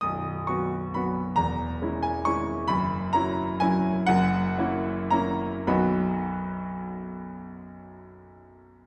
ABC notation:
X:1
M:3/4
L:1/8
Q:1/4=126
K:B
V:1 name="Grand piano"
d'2 c'2 b2 | a3 g c'2 | b2 a2 g2 | f4 a2 |
[B,,,F,,F,B,DFb]6- | [B,,,F,,F,B,DFb]6 |]
V:2 name="Grand piano"
[B,,,,B,,,]2 [F,B,F]2 [F,B,F]2 | [E,,,E,,]2 [G,CE]2 [G,CE]2 | [F,,,F,,]2 [F,CE]2 [F,CE]2 | [F,,,F,,]2 [A,CE]2 [A,CE]2 |
z6 | z6 |]